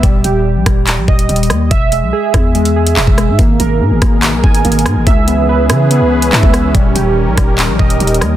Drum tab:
HH |x-----x-----------x-----x--------x--x-x-x-x-----|x-----x-----------x-----x--x-----x--------x-----|x-----x-----------x-----x--------x--x-x-x-x-----|x-----x-----------x-----x--------x--------x-----|
CP |------------------------x-----------------------|------------------------------------x-----------|------------------------x-----------------------|------------------------------------x-----------|
SD |------------------r-----------------------r-----|------------------r-----------------------r-----|------------------r-----------------------r-----|------------------r-----------------------r-----|
BD |o-----------------o-----------o-----------------|o-----------------o--------------------o--------|o-----------------o-----------o-----------------|o--------------------------------------o--------|

HH |x-----x-----------x-----x--------x--x-x-x-x-----|
CP |------------------------x-----------------------|
SD |------------------r-----------------------r-----|
BD |o-----------------o-----------o-----------------|